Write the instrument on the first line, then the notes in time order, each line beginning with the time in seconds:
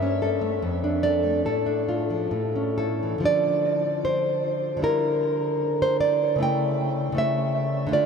nylon-string guitar
Already playing: G2 E5
0.02 C#4
0.22 A4
0.41 A3
0.62 F2
0.84 D4
1.03 A4 D5
1.24 A3
1.46 A2 A4
1.66 D4
1.89 F4
2.10 F3
2.31 A2
2.56 C#4
2.78 E4 A4
3.03 E3
3.18 D3 F3
3.23 D4 D5
4.05 C5
4.77 D3 G3
4.82 E4 A#4
5.82 C5
6.01 D5
6.36 C#3 A3
6.40 E4 G5
7.12 C#3 A3
7.17 E4 E5
7.87 D3 A3
7.92 F4 D5